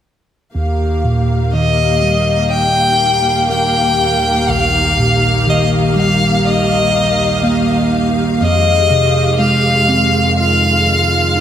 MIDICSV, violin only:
0, 0, Header, 1, 2, 480
1, 0, Start_track
1, 0, Key_signature, -3, "major"
1, 0, Tempo, 983607
1, 264, Time_signature, 4, 2, 24, 8
1, 5565, End_track
2, 0, Start_track
2, 0, Title_t, "Violin"
2, 0, Program_c, 0, 40
2, 752, Note_on_c, 0, 75, 68
2, 1209, Note_off_c, 0, 75, 0
2, 1228, Note_on_c, 0, 79, 93
2, 1687, Note_off_c, 0, 79, 0
2, 1709, Note_on_c, 0, 79, 78
2, 2195, Note_on_c, 0, 77, 80
2, 2202, Note_off_c, 0, 79, 0
2, 2670, Note_off_c, 0, 77, 0
2, 2681, Note_on_c, 0, 75, 71
2, 2779, Note_off_c, 0, 75, 0
2, 2913, Note_on_c, 0, 77, 73
2, 3133, Note_off_c, 0, 77, 0
2, 3158, Note_on_c, 0, 75, 73
2, 3852, Note_off_c, 0, 75, 0
2, 4107, Note_on_c, 0, 75, 85
2, 4566, Note_off_c, 0, 75, 0
2, 4589, Note_on_c, 0, 77, 88
2, 5047, Note_off_c, 0, 77, 0
2, 5067, Note_on_c, 0, 77, 96
2, 5565, Note_off_c, 0, 77, 0
2, 5565, End_track
0, 0, End_of_file